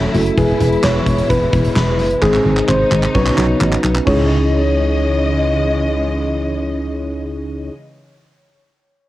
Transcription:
0.00 0.34 C#3 medium
0.00 0.36 F#3 medium
0.00 0.11 A3 medium
0.00 0.36 A3 medium
0.00 0.11 C#4 medium
0.00 0.11 E4 medium
0.00 2.19 E4 loud
0.00 0.11 F#4 medium
0.00 0.11 A4 medium
0.00 0.14 C#5 medium
0.14 0.31 F#1 loud
0.14 0.38 A3 medium
0.14 0.38 C#4 medium
0.14 0.37 E4 medium
0.14 0.38 F#4 medium
0.14 0.38 A4 medium
0.14 open hi-hat medium
0.26 closed hi-hat medium
0.38 0.54 E1 loud
0.38 2.20 B2 medium
0.38 2.20 E3 medium
0.38 3.12 G#3 medium
0.38 2.19 G#3 medium
0.38 2.19 B3 medium
0.38 2.19 E4 medium
0.38 0.85 G#4 loud
0.38 2.19 G#4 medium
0.38 2.19 B4 medium
0.38 kick loud
0.38 closed hi-hat medium
0.61 0.77 E1 loud
0.61 closed hi-hat medium
0.73 closed hi-hat soft
0.84 1.00 E1 loud
0.84 1.31 C#5 loud
0.84 snare loud
0.84 clap loud
1.07 1.23 E1 loud
1.07 kick medium
1.07 closed hi-hat medium
1.18 closed hi-hat medium
1.30 1.46 E1 loud
1.30 1.76 B4 loud
1.30 kick loud
1.30 closed hi-hat medium
1.53 1.69 E1 loud
1.53 kick loud
1.53 closed hi-hat medium
1.65 closed hi-hat medium
1.76 2.01 E1 loud
1.76 2.24 B4 loud
1.76 snare loud
1.76 clap medium
1.99 2.15 F#1 medium
1.99 open hi-hat medium
2.11 closed hi-hat medium
2.22 2.38 G#1 loud
2.22 3.13 C3 medium
2.22 3.13 D#3 medium
2.22 3.13 G#3 medium
2.22 3.13 C4 medium
2.22 4.05 D#4 loud
2.22 3.13 D#4 medium
2.22 2.70 G#4 loud
2.22 3.13 G#4 medium
2.22 3.13 C5 medium
2.22 kick loud
2.22 clap medium
2.34 clap medium
2.46 2.62 G#1 loud
2.57 clap medium
2.68 2.85 G#1 loud
2.68 3.14 C5 loud
2.68 clap medium
2.92 3.08 G#1 loud
2.92 clap medium
3.03 clap medium
3.14 3.31 B1 loud
3.14 4.05 C#3 medium
3.14 4.06 F#3 medium
3.14 4.06 B3 medium
3.14 4.05 B3 medium
3.14 4.04 C#4 medium
3.14 4.05 D#4 medium
3.14 4.05 F#4 medium
3.14 4.05 B4 medium
3.14 3.80 C#5 loud
3.14 kick loud
3.26 clap medium
3.38 3.54 B1 loud
3.38 clap loud
3.61 3.77 A1 loud
3.61 clap loud
3.72 clap loud
3.84 4.00 B1 medium
3.84 clap loud
3.95 clap loud
4.05 7.70 C#2 loud
4.05 7.69 C#3 medium
4.05 7.70 E3 medium
4.05 7.70 G#3 medium
4.05 7.68 C#4 medium
4.05 7.69 D#4 medium
4.05 7.71 E4 medium
4.05 7.69 C#5 loud
4.05 7.69 D#5 loud
4.05 kick loud
4.05 crash medium
4.09 7.72 G#4 medium

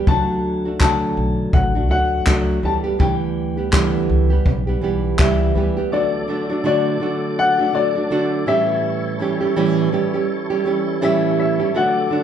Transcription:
0.07 1.13 D2 medium
0.07 0.66 D3 medium
0.07 0.66 F#3 medium
0.07 0.67 A3 medium
0.07 0.66 D4 medium
0.07 0.64 F#4 medium
0.07 0.79 A5 loud
0.07 kick loud
0.65 0.80 A3 soft
0.65 0.80 D4 soft
0.65 0.80 F#4 soft
0.80 1.75 D3 medium
0.80 1.76 F#3 medium
0.80 1.76 A3 medium
0.80 1.75 D4 medium
0.80 1.74 F#4 medium
0.80 1.56 A5 loud
0.80 kick loud
0.80 clap medium
1.17 1.47 B1 medium
1.53 1.90 A1 medium
1.53 1.88 F#5 medium
1.53 kick loud
1.75 1.89 A3 soft
1.75 1.90 D4 soft
1.75 1.90 F#4 medium
1.89 2.20 D2 medium
1.89 2.25 F#3 medium
1.89 2.25 A3 medium
1.89 2.26 D4 medium
1.89 2.26 F#4 medium
1.89 2.60 F#5 medium
2.26 2.57 C#2 medium
2.26 2.62 F#3 medium
2.26 2.63 A3 medium
2.26 2.64 D4 medium
2.26 2.64 F#4 medium
2.26 kick loud
2.26 clap medium
2.63 2.93 D2 medium
2.63 2.85 E3 medium
2.63 2.85 G3 medium
2.63 2.84 B3 medium
2.63 2.83 G4 medium
2.63 2.73 A5 medium
2.84 2.98 G3 soft
2.84 2.98 B3 medium
2.84 2.99 G4 medium
2.98 4.06 D2 medium
2.98 3.58 D3 medium
2.98 3.58 E3 medium
2.98 3.58 G3 medium
2.98 3.57 B3 medium
2.98 3.56 G4 medium
2.98 3.70 G5 medium
2.98 kick loud
3.57 3.71 G3 soft
3.57 3.72 B3 medium
3.57 3.72 G4 medium
3.71 4.31 D3 medium
3.71 4.31 E3 medium
3.71 4.31 G3 medium
3.71 4.31 B3 medium
3.71 4.29 G4 loud
3.71 kick loud
3.71 clap loud
4.10 4.39 C#2 medium
4.30 4.69 G3 soft
4.30 4.68 B3 soft
4.30 4.66 G4 medium
4.46 4.76 B1 medium
4.46 kick medium
4.67 4.81 G3 soft
4.67 4.82 B3 medium
4.67 4.82 G4 medium
4.81 5.12 B1 medium
4.81 5.18 E3 medium
4.81 5.19 G3 medium
4.81 5.19 B3 medium
4.81 5.19 G4 medium
5.19 5.49 C#2 medium
5.19 5.54 E3 medium
5.19 5.55 G3 medium
5.19 5.56 B3 loud
5.19 5.56 G4 loud
5.19 5.95 E5 medium
5.19 kick loud
5.19 clap medium
5.55 5.85 D2 medium
5.55 5.77 E3 medium
5.55 5.78 G3 medium
5.55 5.77 B3 medium
5.55 5.76 G4 medium
5.77 5.92 G3 soft
5.77 5.92 B3 medium
5.77 5.92 G4 medium
5.92 6.27 D3 medium
5.92 8.45 F#3 medium
5.92 6.28 A3 medium
5.92 8.45 D4 medium
5.92 6.28 D4 medium
5.92 6.29 F#4 medium
5.92 12.23 A4 medium
5.92 8.45 D5 medium
5.92 6.65 D5 medium
6.28 6.50 D3 medium
6.28 6.51 A3 medium
6.28 6.50 D4 medium
6.28 6.48 F#4 medium
6.50 6.64 A3 soft
6.50 6.64 D4 soft
6.50 6.65 F#4 medium
6.64 6.99 D3 medium
6.64 7.00 A3 medium
6.64 7.01 D4 medium
6.64 7.01 F#4 loud
6.64 7.41 D5 medium
7.00 7.59 D3 medium
7.00 7.60 A3 medium
7.00 7.59 D4 medium
7.00 7.57 F#4 medium
7.39 7.72 F#5 loud
7.58 7.72 A3 medium
7.58 7.73 D4 medium
7.58 7.74 F#4 medium
7.73 7.95 D3 medium
7.73 7.96 A3 medium
7.73 7.96 D4 medium
7.73 7.94 F#4 medium
7.73 8.50 D5 medium
7.95 8.10 A3 soft
7.95 8.11 D4 soft
7.95 8.10 F#4 soft
8.10 8.47 D3 medium
8.10 8.47 A3 medium
8.10 8.47 D4 medium
8.10 8.48 F#4 medium
8.46 9.20 A2 medium
8.46 9.18 E3 medium
8.46 11.71 G3 medium
8.46 9.19 G3 medium
8.46 9.20 C#4 medium
8.46 11.71 E4 medium
8.46 9.21 G4 medium
8.46 11.71 C#5 medium
8.46 10.62 E5 loud
9.19 9.42 E3 medium
9.19 9.42 G3 medium
9.19 9.40 C#4 medium
9.19 9.39 G4 medium
9.41 9.56 G3 medium
9.41 9.56 C#4 medium
9.41 9.56 G4 medium
9.56 9.93 A2 medium
9.56 9.90 E3 loud
9.56 9.91 G3 loud
9.56 9.92 C#4 medium
9.56 9.93 G4 loud
9.91 10.14 E3 medium
9.91 10.14 G3 medium
9.91 10.14 C#4 medium
9.91 10.13 G4 medium
10.14 10.51 G3 soft
10.14 10.51 C#4 soft
10.14 10.49 G4 medium
10.50 10.65 G3 medium
10.50 10.65 C#4 medium
10.50 10.65 G4 medium
10.64 11.01 E3 medium
10.64 11.01 G3 medium
10.64 11.01 C#4 medium
10.64 11.02 G4 medium
11.01 11.60 A2 medium
11.01 11.60 E3 medium
11.01 11.60 G3 medium
11.01 11.60 C#4 medium
11.01 11.59 G4 medium
11.01 11.38 E5 medium
11.40 11.77 E5 medium
11.60 11.74 G3 soft
11.60 11.75 C#4 medium
11.60 11.75 G4 medium
11.74 12.09 D3 medium
11.74 12.23 F#3 medium
11.74 12.10 A3 medium
11.74 12.11 D4 medium
11.74 12.23 D4 medium
11.74 12.12 F#4 medium
11.74 12.23 D5 medium
11.74 12.23 F#5 medium
12.10 12.23 D3 medium
12.10 12.23 A3 medium
12.10 12.23 D4 medium
12.10 12.23 F#4 medium

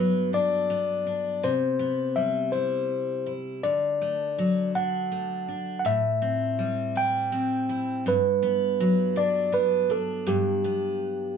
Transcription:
0.00 1.43 G2 medium
0.00 1.50 F#3 medium
0.00 0.69 B3 medium
0.00 0.29 B4 loud
0.33 1.05 D4 medium
0.33 1.47 D5 loud
0.70 1.79 B3 medium
1.07 1.50 D4 medium
1.43 3.63 C3 medium
1.43 2.19 C5 loud
1.79 2.90 B3 medium
2.16 3.71 G3 medium
2.16 2.50 E5 medium
2.52 3.25 E4 medium
2.52 3.32 C5 medium
3.26 3.71 E4 medium
3.63 5.85 D3 medium
3.63 4.71 D5 medium
4.01 5.11 A3 medium
4.38 5.93 F#3 medium
4.75 5.47 D4 medium
4.75 5.78 F#5 loud
5.12 6.21 A3 medium
5.49 5.93 D4 medium
5.79 5.86 F#5 medium
5.85 8.05 A2 medium
5.85 7.00 E5 loud
6.22 7.31 C4 medium
6.59 8.80 G3 medium
6.96 7.68 E4 medium
6.96 8.03 G5 loud
7.32 8.13 C4 medium
7.69 8.14 E4 medium
8.06 10.25 G2 medium
8.06 9.21 B4 loud
8.42 9.52 B3 medium
8.80 11.37 F#3 medium
9.16 9.89 D4 medium
9.16 9.55 D5 loud
9.52 10.64 B3 medium
9.52 9.91 B4 loud
9.90 11.37 D4 medium
9.90 10.29 A4 medium
10.27 11.37 G2 medium
10.27 11.37 G4 loud
10.64 11.37 B3 medium

